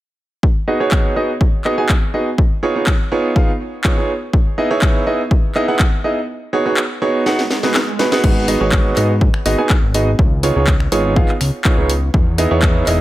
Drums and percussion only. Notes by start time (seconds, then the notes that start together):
0.43 kick
0.91 kick, clap
1.41 kick
1.65 clap
1.89 kick, clap
2.38 kick
2.87 kick, clap
3.36 kick
3.84 kick, clap
4.33 kick
4.82 kick, clap
5.31 kick
5.55 clap
5.79 kick, clap
6.77 clap
7.26 snare
7.39 snare
7.51 snare
7.63 snare
7.74 snare, clap
7.99 snare
8.12 snare
8.24 kick, crash
8.48 open hi-hat
8.72 kick, clap
8.96 clap, open hi-hat
9.21 kick
9.34 finger snap
9.46 open hi-hat
9.70 kick, clap
9.94 open hi-hat
10.19 kick
10.43 open hi-hat
10.67 kick, clap
10.80 finger snap
10.92 open hi-hat
11.16 kick
11.28 clap
11.41 finger snap, open hi-hat
11.65 kick, clap
11.90 open hi-hat
12.14 kick
12.38 open hi-hat
12.62 kick, clap
12.87 clap, open hi-hat